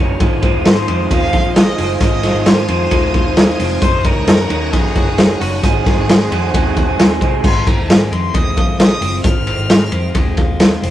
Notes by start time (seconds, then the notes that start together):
Already playing: F#1 D#3 F#3 A#3 C#4 F#4 C#5 A#5 F6
0.00 D#4 A#4
0.20 G#1 D#3 G#3 D#4 F4 C5 F5 G#5 D#6, kick, ride
0.42 G#3 C4 D#4 F4 C5, kick, ride
0.54 D#2
0.65 G#2 G#3 C5, snare, ride
0.87 F2 G#3 C4 D#4 F4 C5, ride
1.10 D#2 G#3 D#4 F4 C5 F5, kick, ride
1.33 A#1 F4, kick, ride
1.43 D#4 F4 C5
1.56 G#3 D#5, snare, ride
1.77 F#1 G#3 C4 D#4 F4 C5, open hi-hat, ride
2.00 G#1 D#3 G#3 D#4 F4 C5 D#5, kick, hi-hat pedal, ride
2.23 G#3 C4 D#4 F4 C5, snare, ride
2.34 G#1
2.46 G#2 G#3 C5, snare, ride
2.68 F2 G#3 C4 D#4 F4 C5, ride
2.91 D#2 G#3 D#4 F4 C5, kick, ride
3.14 D#2 F4, kick, ride
3.25 D#4 F4 C5
3.36 G#3, snare, ride
3.59 F1 G#3 C4 D#4 F4 C5, open hi-hat, ride
3.81 F#1 D#3 F#3 C#4 D#4 A#4 C5 C#5 F#5 A#5, kick, hi-hat pedal, ride
4.04 F#3 C#4 D#4 A#4, kick, ride
4.16 C#2
4.27 F#2 A#3, snare, ride
4.49 D#2 F#3 C#4 D#4 A#4, ride
4.72 A#1 F#3 A#3 C#4 D#4 G#4 A#4, kick, ride
4.95 F#1 F#4, kick, ride
5.06 C#4 D#4 A#4
5.18 A#3, snare, ride
5.40 F#1 F#3 C#4 D#4 F#4 A#4, open hi-hat, ride
5.62 G#1 D#3 F#3 C4 D#4 G#4 C5 F#5 G#5, kick, hi-hat pedal, ride
5.85 G#2 D#3 F#3 C4 D#4 G#4, kick, snare, ride
5.97 G#1
6.08 G#2 G#3, snare, ride
6.31 F2 G#2 D#3 F#3 C4 D#4 G#4, ride
6.54 D#2 G#2 D#3 F#3 G#3 C4 D#4 G#4, kick, ride
6.76 D#2 F#4, kick, ride
6.87 F#3 C4 D#4 G#4
6.98 D#2 G#3, snare, ride
7.21 C2 F#3 C4 D#4 G#4, kick, ride
7.44 G#1 D#3 C6, kick, crash
7.66 C4 A#5, kick, ride
7.77 D#2
7.89 G#2 G#3 G#5, snare, ride
8.11 F2 C4 C6, ride
8.34 D#2 G#3 D#6, kick, ride
8.56 A#1 F4, kick, ride
8.79 G#3 D#6, snare, ride
9.01 F#1 C4, open hi-hat, ride
9.24 G#1 D#3 F6, kick, hi-hat pedal, ride
9.47 C4, ride
9.57 G#1
9.69 G#2 G#3, snare, ride
9.92 F2 C4, ride
10.14 D#2 G#3, kick, ride
10.37 D#2 F4, kick, ride
10.60 G#3, snare, ride
10.82 F1 C4, open hi-hat, ride